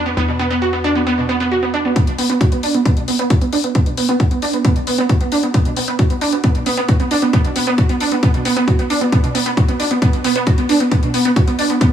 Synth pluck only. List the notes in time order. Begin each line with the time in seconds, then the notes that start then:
0.06 B3
0.17 B3
0.28 B2
0.39 B3
0.51 B3
0.62 F#4
0.73 B3
0.84 D4
0.95 B3
1.07 B3
1.18 B2
1.29 B3
1.40 B3
1.52 F#4
1.63 B3
1.74 D4
1.85 B3
1.96 B3
2.07 B2
2.18 B3
2.30 B3
2.41 F#4
2.52 B3
2.63 D4
2.75 B3
2.86 B3
2.97 B2
3.08 B3
3.19 B3
3.30 F#4
3.42 B3
3.53 D4
3.64 B3
3.75 B3
3.86 B2
3.98 B3
4.09 B3
4.20 F#4
4.31 B3
4.42 D4
4.54 B3
4.65 B3
4.76 B2
4.87 B3
4.98 B3
5.10 F#4
5.21 B3
5.32 D4
5.43 B3
5.54 B3
5.66 B2
5.77 B3
5.88 B3
5.99 F#4
6.10 B3
6.21 D4
6.33 B3
6.44 B3
6.55 B2
6.66 B3
6.77 B3
6.89 F#4
7.00 B3
7.11 D4
7.22 B3
7.34 B3
7.45 B2
7.56 B3
7.67 B3
7.78 F#4
7.90 B3
8.01 D4
8.12 B3
8.23 B3
8.34 B2
8.45 B3
8.56 B3
8.68 F#4
8.79 B3
8.90 D4
9.01 B3
9.12 B3
9.24 B2
9.35 B3
9.46 B3
9.57 F#4
9.69 B3
9.80 D4
9.91 B3
10.02 B3
10.13 B2
10.24 B3
10.36 B3
10.47 F#4
10.58 B3
10.69 D4
10.80 B3
10.92 B3
11.03 B2
11.14 B3
11.25 B3
11.36 F#4
11.48 B3
11.59 D4
11.70 B3
11.81 B3